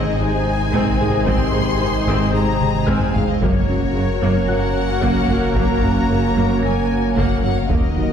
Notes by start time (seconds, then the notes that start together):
Already playing: G#1 C3 D#3 G#3 C4 D#4 G#4 C#5 D#5 F6
0.18 G#1 G#2 G#3 D#4 C5 G#5
0.73 G#1 G#2 G#3 C4, taiko
1.00 G#1 G#2 G#3 G#4
1.27 G#1 G#2 G#3 C4 C6, taiko
1.53 G#1 G#2 G#3 D#4
1.80 G#1 G#2 D#3 G#4
2.07 G#1 G#2 G#3 C4 D#5 D#6
2.34 G#1 G#2 G#3 D#4 A#5
2.61 taiko mid
2.86 G#1 G#2 G#3 C4 G#5 F6, taiko low-mid
3.15 G#1 G#2 G#3 G#4 F5, taiko low
3.29 D#5
3.41 F#1 F#2 F#3 A#3 C#4 F#4 A#4 C#5 F#5, taiko
3.68 F#1 F#2 F#3 C#4
3.94 F#1 F#2 C#3 F#4
4.21 F#1 F#2 F#3 A#3
4.48 F#1 F#2 F#3 C#4 F#5 F#6
5.02 F#1 F#2 F#3 A#3, taiko
5.28 F#1 F#2 F#3 F#4
5.55 F#1 F#2 F#3 A#3 A#5, taiko
5.82 F#1 F#2 F#3 C#4
6.09 F#1 F#2 C#3 F#4
6.36 F#1 F#2 F#3 A#3
6.63 F#1 F#2 F#3 C#4 G#5 A#5 A#6
7.16 F#1 F#2 F#3 A#3 F#5, taiko
7.43 F#1 F#2 F#3 F#4 F#5
7.57 F5
7.69 D#1 D#2 D#3 F#3 A#3 D#4 F#4 A#4 D#5 F#5, taiko
7.96 D#2 F#3 A#3